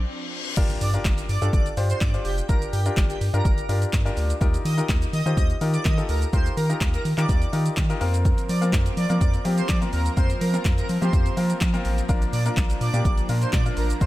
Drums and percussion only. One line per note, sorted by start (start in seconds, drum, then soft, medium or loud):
0.57 kick loud
0.57 closed hi-hat medium
0.57 crash loud
0.57 shaker medium
0.70 closed hi-hat medium
0.70 shaker medium
0.81 open hi-hat medium
0.81 shaker medium
0.94 closed hi-hat medium
0.94 shaker medium
1.05 kick loud
1.05 snare medium
1.05 clap loud
1.05 closed hi-hat medium
1.05 shaker medium
1.18 closed hi-hat medium
1.18 shaker medium
1.29 open hi-hat medium
1.29 shaker medium
1.42 closed hi-hat soft
1.42 shaker medium
1.53 kick loud
1.53 closed hi-hat medium
1.53 shaker medium
1.66 closed hi-hat soft
1.66 shaker medium
1.77 open hi-hat medium
1.77 shaker medium
1.90 closed hi-hat soft
1.90 shaker medium
2.01 kick loud
2.01 snare medium
2.01 clap loud
2.01 closed hi-hat medium
2.01 shaker medium
2.14 closed hi-hat medium
2.14 shaker medium
2.25 open hi-hat medium
2.25 shaker medium
2.38 closed hi-hat medium
2.38 shaker medium
2.49 kick loud
2.49 closed hi-hat medium
2.49 shaker medium
2.62 closed hi-hat medium
2.62 shaker medium
2.73 open hi-hat medium
2.73 shaker medium
2.86 closed hi-hat medium
2.86 shaker medium
2.97 kick loud
2.97 snare medium
2.97 clap loud
2.97 closed hi-hat medium
2.97 shaker medium
3.10 closed hi-hat medium
3.10 shaker medium
3.21 open hi-hat medium
3.21 shaker medium
3.34 closed hi-hat soft
3.34 shaker medium
3.45 kick loud
3.45 closed hi-hat medium
3.45 shaker medium
3.58 closed hi-hat medium
3.58 shaker soft
3.69 open hi-hat medium
3.69 shaker medium
3.82 closed hi-hat soft
3.82 shaker medium
3.93 kick loud
3.93 snare medium
3.93 clap loud
3.93 closed hi-hat medium
3.93 shaker medium
4.06 closed hi-hat medium
4.06 shaker medium
4.17 open hi-hat medium
4.17 shaker medium
4.30 closed hi-hat medium
4.30 shaker medium
4.41 kick loud
4.41 closed hi-hat medium
4.41 shaker medium
4.54 closed hi-hat medium
4.54 shaker medium
4.66 open hi-hat medium
4.66 shaker medium
4.78 closed hi-hat medium
4.78 shaker medium
4.89 kick loud
4.89 snare medium
4.89 clap loud
4.89 closed hi-hat medium
4.89 shaker medium
5.02 closed hi-hat medium
5.02 shaker medium
5.13 open hi-hat medium
5.13 shaker medium
5.26 closed hi-hat soft
5.26 shaker medium
5.37 kick loud
5.37 closed hi-hat medium
5.37 shaker medium
5.50 closed hi-hat medium
5.50 shaker soft
5.61 open hi-hat medium
5.61 shaker medium
5.74 closed hi-hat soft
5.74 shaker medium
5.85 kick loud
5.85 snare medium
5.85 clap loud
5.85 closed hi-hat medium
5.85 shaker medium
5.98 closed hi-hat medium
5.98 shaker medium
6.09 open hi-hat medium
6.09 shaker medium
6.22 closed hi-hat medium
6.22 shaker medium
6.33 kick loud
6.33 closed hi-hat medium
6.33 shaker medium
6.46 closed hi-hat medium
6.46 shaker medium
6.57 open hi-hat medium
6.57 shaker medium
6.70 closed hi-hat soft
6.70 shaker medium
6.81 kick loud
6.81 snare medium
6.81 clap loud
6.81 closed hi-hat medium
6.81 shaker medium
6.94 closed hi-hat medium
6.94 shaker medium
7.05 open hi-hat medium
7.05 shaker medium
7.18 clap medium
7.18 closed hi-hat medium
7.18 shaker medium
7.29 kick loud
7.29 closed hi-hat medium
7.29 shaker medium
7.42 closed hi-hat medium
7.42 shaker medium
7.53 open hi-hat medium
7.53 shaker medium
7.66 closed hi-hat soft
7.66 shaker medium
7.77 kick loud
7.77 snare medium
7.77 clap loud
7.77 closed hi-hat medium
7.77 shaker medium
7.90 closed hi-hat medium
7.90 shaker medium
8.01 open hi-hat medium
8.01 shaker medium
8.14 closed hi-hat medium
8.14 shaker medium
8.25 kick loud
8.25 closed hi-hat medium
8.25 shaker medium
8.38 closed hi-hat medium
8.38 shaker medium
8.49 open hi-hat medium
8.49 shaker medium
8.62 closed hi-hat medium
8.62 shaker medium
8.73 kick loud
8.73 snare medium
8.73 clap loud
8.73 closed hi-hat medium
8.73 shaker medium
8.86 closed hi-hat medium
8.86 shaker medium
8.97 open hi-hat medium
8.97 shaker medium
9.10 closed hi-hat soft
9.10 shaker medium
9.21 kick loud
9.21 closed hi-hat medium
9.21 shaker medium
9.34 closed hi-hat soft
9.34 shaker soft
9.45 open hi-hat medium
9.45 shaker medium
9.58 closed hi-hat soft
9.58 shaker medium
9.69 kick loud
9.69 snare loud
9.69 clap loud
9.69 closed hi-hat medium
9.69 shaker medium
9.82 closed hi-hat medium
9.82 shaker medium
9.93 open hi-hat medium
9.93 shaker medium
10.06 closed hi-hat medium
10.06 shaker medium
10.17 kick loud
10.17 closed hi-hat medium
10.17 shaker medium
10.30 closed hi-hat medium
10.30 shaker medium
10.41 open hi-hat medium
10.41 shaker medium
10.54 closed hi-hat soft
10.54 shaker medium
10.65 kick loud
10.65 snare medium
10.65 clap loud
10.65 closed hi-hat medium
10.65 shaker medium
10.78 closed hi-hat medium
10.78 shaker medium
10.89 open hi-hat medium
10.89 shaker medium
11.02 closed hi-hat medium
11.02 shaker medium
11.13 kick loud
11.13 closed hi-hat medium
11.13 shaker medium
11.26 closed hi-hat medium
11.26 shaker soft
11.37 open hi-hat medium
11.37 shaker medium
11.50 closed hi-hat soft
11.50 shaker medium
11.61 kick loud
11.61 snare medium
11.61 clap loud
11.61 closed hi-hat medium
11.61 shaker medium
11.74 closed hi-hat medium
11.74 shaker medium
11.85 open hi-hat medium
11.85 shaker medium
11.98 closed hi-hat medium
11.98 shaker medium
12.09 kick loud
12.09 closed hi-hat medium
12.09 shaker medium
12.22 closed hi-hat medium
12.22 shaker medium
12.33 open hi-hat medium
12.33 shaker medium
12.46 closed hi-hat medium
12.46 shaker medium
12.57 kick loud
12.57 snare medium
12.57 clap loud
12.57 closed hi-hat medium
12.57 shaker medium
12.70 closed hi-hat medium
12.70 shaker medium
12.81 open hi-hat medium
12.81 shaker medium
12.94 closed hi-hat soft
12.94 shaker medium
13.05 kick loud
13.05 closed hi-hat medium
13.05 shaker medium
13.18 closed hi-hat soft
13.18 shaker soft
13.29 open hi-hat medium
13.29 shaker medium
13.42 closed hi-hat soft
13.42 shaker medium
13.53 kick loud
13.53 snare medium
13.53 clap loud
13.53 closed hi-hat medium
13.53 shaker medium
13.66 closed hi-hat medium
13.66 shaker medium
13.77 open hi-hat medium
13.77 shaker medium
13.90 closed hi-hat medium
13.90 shaker medium
14.01 kick loud
14.01 closed hi-hat medium
14.01 shaker medium